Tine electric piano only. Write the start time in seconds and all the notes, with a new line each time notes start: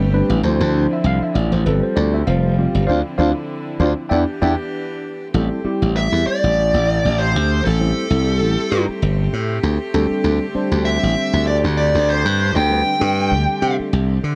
0.13 G3 C4 D4 B4
0.44 F3 D4 E4 C5
0.93 E5
1.06 F5
1.23 E5
1.34 D5
1.52 C5
1.66 G3 C4 F4 A4 B4
1.83 C5
1.96 D5
2.14 E5
2.27 G3 C4 F4 C5 F5
2.58 G3 C4 F4 G4
2.87 C4 D4 F4 C5 D5 F5
3.18 C4 D4 F4 C5 D5 F5
3.80 C4 D4 F4 C5 D5 F5
4.09 B3 D4 E4 D5 E5 G5
4.42 B3 D4 E4 D5 E5 G5
5.34 G3 C4 E4 A4
5.64 G3 C4 E4 G4
7.80 G3 C4 E4 C5
8.10 G3 C4 E4 A4
9.94 G3 C4 D4 A4
10.55 G3 C4 D4 C5
12.69 G3 C4 D4 B4
12.99 G3 C4 D4 A4